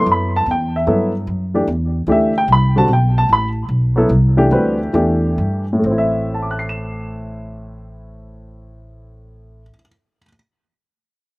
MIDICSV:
0, 0, Header, 1, 3, 480
1, 0, Start_track
1, 0, Tempo, 402414
1, 1039, Time_signature, 3, 2, 24, 8
1, 4400, Tempo, 419287
1, 5840, Tempo, 454545
1, 6800, Tempo, 473934
1, 12401, End_track
2, 0, Start_track
2, 0, Title_t, "Grand piano"
2, 0, Program_c, 0, 0
2, 0, Note_on_c, 0, 54, 46
2, 0, Note_on_c, 0, 59, 45
2, 0, Note_on_c, 0, 64, 46
2, 0, Note_on_c, 0, 69, 53
2, 138, Note_on_c, 0, 83, 71
2, 419, Note_off_c, 0, 83, 0
2, 435, Note_on_c, 0, 81, 77
2, 522, Note_off_c, 0, 54, 0
2, 522, Note_off_c, 0, 59, 0
2, 525, Note_off_c, 0, 64, 0
2, 527, Note_off_c, 0, 69, 0
2, 573, Note_off_c, 0, 81, 0
2, 608, Note_on_c, 0, 79, 73
2, 894, Note_off_c, 0, 79, 0
2, 907, Note_on_c, 0, 76, 63
2, 1036, Note_on_c, 0, 54, 55
2, 1040, Note_on_c, 0, 59, 50
2, 1041, Note_on_c, 0, 64, 52
2, 1044, Note_on_c, 0, 69, 62
2, 1324, Note_off_c, 0, 54, 0
2, 1326, Note_off_c, 0, 59, 0
2, 1327, Note_off_c, 0, 64, 0
2, 1329, Note_off_c, 0, 69, 0
2, 1340, Note_off_c, 0, 76, 0
2, 1842, Note_on_c, 0, 52, 49
2, 1843, Note_on_c, 0, 57, 49
2, 1847, Note_on_c, 0, 62, 51
2, 1853, Note_on_c, 0, 67, 59
2, 1984, Note_off_c, 0, 52, 0
2, 1985, Note_off_c, 0, 57, 0
2, 1987, Note_off_c, 0, 62, 0
2, 1990, Note_off_c, 0, 67, 0
2, 2479, Note_on_c, 0, 52, 53
2, 2484, Note_on_c, 0, 57, 54
2, 2488, Note_on_c, 0, 62, 48
2, 2497, Note_on_c, 0, 67, 64
2, 2527, Note_on_c, 0, 76, 71
2, 2766, Note_off_c, 0, 52, 0
2, 2768, Note_off_c, 0, 57, 0
2, 2770, Note_off_c, 0, 62, 0
2, 2775, Note_off_c, 0, 67, 0
2, 2813, Note_off_c, 0, 76, 0
2, 2836, Note_on_c, 0, 79, 77
2, 2973, Note_off_c, 0, 79, 0
2, 3011, Note_on_c, 0, 83, 84
2, 3291, Note_on_c, 0, 55, 47
2, 3293, Note_on_c, 0, 50, 54
2, 3295, Note_off_c, 0, 83, 0
2, 3300, Note_on_c, 0, 60, 47
2, 3309, Note_on_c, 0, 66, 59
2, 3315, Note_on_c, 0, 81, 81
2, 3429, Note_off_c, 0, 55, 0
2, 3430, Note_off_c, 0, 50, 0
2, 3433, Note_off_c, 0, 60, 0
2, 3438, Note_off_c, 0, 66, 0
2, 3453, Note_off_c, 0, 81, 0
2, 3496, Note_on_c, 0, 79, 70
2, 3778, Note_off_c, 0, 79, 0
2, 3793, Note_on_c, 0, 81, 80
2, 3932, Note_off_c, 0, 81, 0
2, 3968, Note_on_c, 0, 83, 82
2, 4145, Note_off_c, 0, 83, 0
2, 4708, Note_on_c, 0, 54, 56
2, 4720, Note_on_c, 0, 59, 54
2, 4728, Note_on_c, 0, 64, 58
2, 4729, Note_on_c, 0, 69, 68
2, 4852, Note_off_c, 0, 54, 0
2, 4858, Note_off_c, 0, 59, 0
2, 4862, Note_off_c, 0, 64, 0
2, 4862, Note_off_c, 0, 69, 0
2, 5181, Note_on_c, 0, 52, 62
2, 5185, Note_on_c, 0, 62, 57
2, 5186, Note_on_c, 0, 57, 56
2, 5191, Note_on_c, 0, 67, 72
2, 5344, Note_on_c, 0, 55, 50
2, 5352, Note_on_c, 0, 60, 50
2, 5352, Note_on_c, 0, 66, 45
2, 5358, Note_on_c, 0, 71, 62
2, 5639, Note_off_c, 0, 55, 0
2, 5643, Note_off_c, 0, 60, 0
2, 5643, Note_off_c, 0, 66, 0
2, 5646, Note_off_c, 0, 71, 0
2, 5805, Note_off_c, 0, 52, 0
2, 5806, Note_off_c, 0, 62, 0
2, 5807, Note_off_c, 0, 57, 0
2, 5809, Note_off_c, 0, 67, 0
2, 5825, Note_on_c, 0, 52, 63
2, 5837, Note_on_c, 0, 57, 55
2, 5838, Note_on_c, 0, 62, 53
2, 5842, Note_on_c, 0, 67, 64
2, 6561, Note_off_c, 0, 52, 0
2, 6566, Note_off_c, 0, 57, 0
2, 6567, Note_off_c, 0, 62, 0
2, 6569, Note_off_c, 0, 67, 0
2, 6664, Note_on_c, 0, 45, 54
2, 6734, Note_on_c, 0, 57, 49
2, 6802, Note_on_c, 0, 60, 51
2, 6859, Note_on_c, 0, 64, 53
2, 6927, Note_on_c, 0, 76, 62
2, 7295, Note_on_c, 0, 81, 41
2, 7376, Note_on_c, 0, 86, 37
2, 7460, Note_on_c, 0, 90, 37
2, 7544, Note_on_c, 0, 96, 34
2, 7647, Note_on_c, 0, 100, 34
2, 10609, Note_off_c, 0, 45, 0
2, 10676, Note_off_c, 0, 57, 0
2, 10742, Note_off_c, 0, 60, 0
2, 10798, Note_off_c, 0, 64, 0
2, 10867, Note_off_c, 0, 76, 0
2, 11166, Note_off_c, 0, 81, 0
2, 11206, Note_off_c, 0, 86, 0
2, 11248, Note_off_c, 0, 90, 0
2, 11290, Note_off_c, 0, 96, 0
2, 11342, Note_off_c, 0, 100, 0
2, 12401, End_track
3, 0, Start_track
3, 0, Title_t, "Upright bass"
3, 0, Program_c, 1, 32
3, 76, Note_on_c, 1, 42, 80
3, 543, Note_off_c, 1, 42, 0
3, 549, Note_on_c, 1, 40, 76
3, 1019, Note_off_c, 1, 40, 0
3, 1037, Note_on_c, 1, 43, 71
3, 1504, Note_off_c, 1, 43, 0
3, 1516, Note_on_c, 1, 42, 74
3, 1982, Note_off_c, 1, 42, 0
3, 1997, Note_on_c, 1, 40, 80
3, 2458, Note_off_c, 1, 40, 0
3, 2465, Note_on_c, 1, 38, 74
3, 2937, Note_off_c, 1, 38, 0
3, 2956, Note_on_c, 1, 36, 79
3, 3423, Note_off_c, 1, 36, 0
3, 3437, Note_on_c, 1, 35, 76
3, 3903, Note_off_c, 1, 35, 0
3, 3922, Note_on_c, 1, 33, 73
3, 4388, Note_off_c, 1, 33, 0
3, 4396, Note_on_c, 1, 35, 79
3, 4853, Note_off_c, 1, 35, 0
3, 4862, Note_on_c, 1, 36, 80
3, 5330, Note_off_c, 1, 36, 0
3, 5339, Note_on_c, 1, 38, 75
3, 5821, Note_off_c, 1, 38, 0
3, 5829, Note_on_c, 1, 40, 81
3, 6291, Note_off_c, 1, 40, 0
3, 6296, Note_on_c, 1, 43, 70
3, 6772, Note_off_c, 1, 43, 0
3, 6778, Note_on_c, 1, 33, 73
3, 10679, Note_off_c, 1, 33, 0
3, 12401, End_track
0, 0, End_of_file